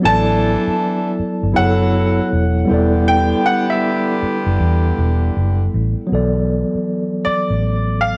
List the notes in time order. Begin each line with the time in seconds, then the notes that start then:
0.00 E3 F#3 B3 D4 E4 A4
0.05 A1 A4 D5 A5
0.67 muted fingered electric bass stroke
1.19 muted fingered electric bass stroke
1.43 G1
1.52 F#3 B3 E4 G#4 A4 F#5
1.57 F#1 C#5
1.62 A4
2.32 E1
2.65 D3 G3 B3 G4
2.69 E1 E4 A4
2.74 D5
3.08 G5
3.46 F#5
3.70 E5
4.22 muted fingered electric bass stroke
4.46 F#1
4.60 E2
4.98 E1
5.36 F#1
5.74 A1
6.07 F#3 B3
6.11 B1 E3 A4 D5
6.75 muted fingered electric bass stroke
7.25 D5, muted fingered electric bass stroke
7.50 A1
8.01 F5